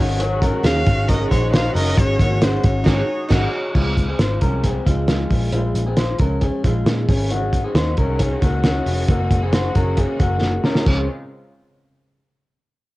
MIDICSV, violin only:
0, 0, Header, 1, 2, 480
1, 0, Start_track
1, 0, Key_signature, -5, "major"
1, 0, Tempo, 444115
1, 214, Time_signature, 4, 2, 24, 8
1, 14008, End_track
2, 0, Start_track
2, 0, Title_t, "Violin"
2, 0, Program_c, 0, 40
2, 690, Note_on_c, 0, 77, 120
2, 1171, Note_on_c, 0, 75, 102
2, 1187, Note_off_c, 0, 77, 0
2, 1402, Note_off_c, 0, 75, 0
2, 1409, Note_on_c, 0, 73, 82
2, 1634, Note_off_c, 0, 73, 0
2, 1652, Note_on_c, 0, 77, 100
2, 1875, Note_off_c, 0, 77, 0
2, 1898, Note_on_c, 0, 75, 107
2, 2140, Note_on_c, 0, 73, 102
2, 2156, Note_off_c, 0, 75, 0
2, 2626, Note_on_c, 0, 72, 87
2, 2642, Note_off_c, 0, 73, 0
2, 2865, Note_on_c, 0, 73, 76
2, 2881, Note_off_c, 0, 72, 0
2, 3820, Note_off_c, 0, 73, 0
2, 14008, End_track
0, 0, End_of_file